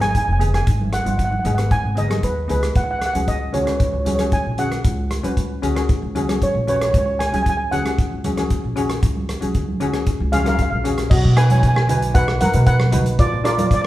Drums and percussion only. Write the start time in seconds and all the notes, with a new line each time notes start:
0.02 cross-stick, closed hi-hat, high conga
0.15 kick, closed hi-hat
0.41 closed hi-hat, low conga
0.54 cross-stick, closed hi-hat
0.67 kick, closed hi-hat
0.81 high conga
0.93 cross-stick, closed hi-hat
1.06 closed hi-hat, high conga
1.19 kick, closed hi-hat
1.32 high conga
1.45 closed hi-hat, low conga
1.58 cross-stick, closed hi-hat
1.71 kick, closed hi-hat
1.97 closed hi-hat, low conga
2.11 cross-stick, closed hi-hat, high conga
2.23 kick, closed hi-hat
2.49 closed hi-hat, low conga
2.63 cross-stick, closed hi-hat
2.75 kick, closed hi-hat
3.02 cross-stick, closed hi-hat
3.15 closed hi-hat, high conga
3.28 kick, closed hi-hat
3.54 closed hi-hat, low conga
3.67 cross-stick, closed hi-hat
3.80 kick, closed hi-hat
4.06 closed hi-hat, high conga, low conga
4.19 cross-stick, closed hi-hat, high conga
4.32 kick, closed hi-hat
4.58 closed hi-hat, low conga
4.72 cross-stick, closed hi-hat
4.84 kick, closed hi-hat
5.11 cross-stick, closed hi-hat
5.24 closed hi-hat, high conga
5.37 kick, closed hi-hat
5.63 closed hi-hat, low conga
5.76 cross-stick, closed hi-hat
5.89 kick, closed hi-hat
6.16 closed hi-hat, high conga, low conga
6.29 cross-stick, closed hi-hat, high conga
6.42 kick, closed hi-hat
6.68 closed hi-hat, low conga
6.82 cross-stick, closed hi-hat
6.94 kick, closed hi-hat
7.20 cross-stick, closed hi-hat
7.33 closed hi-hat, high conga
7.46 kick, closed hi-hat
7.72 closed hi-hat, low conga
7.86 cross-stick, closed hi-hat
7.98 kick, closed hi-hat
8.24 closed hi-hat, high conga, low conga
8.37 cross-stick, closed hi-hat, high conga
8.50 kick, closed hi-hat
8.76 closed hi-hat, low conga
8.90 cross-stick, closed hi-hat
9.03 kick, closed hi-hat
9.16 high conga
9.29 cross-stick, closed hi-hat
9.42 closed hi-hat, high conga
9.54 kick, closed hi-hat, low conga
9.68 high conga
9.80 closed hi-hat, low conga
9.94 cross-stick, closed hi-hat
10.06 kick, closed hi-hat
10.33 closed hi-hat, high conga, low conga
10.46 cross-stick, closed hi-hat, high conga
10.59 kick, closed hi-hat
10.85 closed hi-hat, low conga
10.98 cross-stick, closed hi-hat
11.11 kick, crash
11.37 cross-stick, closed hi-hat
11.50 closed hi-hat, high conga
11.63 kick, closed hi-hat
11.76 cross-stick
11.89 closed hi-hat, low conga
12.02 closed hi-hat
12.15 kick, closed hi-hat
12.28 cross-stick
12.41 closed hi-hat, high conga
12.53 closed hi-hat, low conga
12.66 kick, closed hi-hat
12.80 cross-stick, high conga
12.92 closed hi-hat, high conga, low conga
13.06 closed hi-hat
13.19 kick, closed hi-hat
13.45 cross-stick, closed hi-hat
13.58 closed hi-hat, high conga
13.71 kick, closed hi-hat